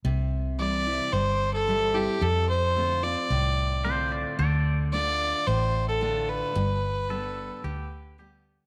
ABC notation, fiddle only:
X:1
M:4/4
L:1/16
Q:1/4=110
K:C
V:1 name="Fiddle"
z4 d4 c3 A3 G2 | A2 c4 d8 z2 | z4 d4 c3 A3 B2- | B12 z4 |]